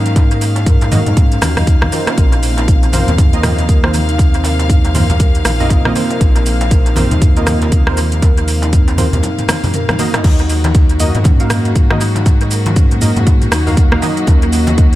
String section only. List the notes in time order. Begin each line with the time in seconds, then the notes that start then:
Already playing: D#3 F#3 A#3 F5
2.18 C3 F3 A#3
10.24 D#3 F#3 A#3 F#4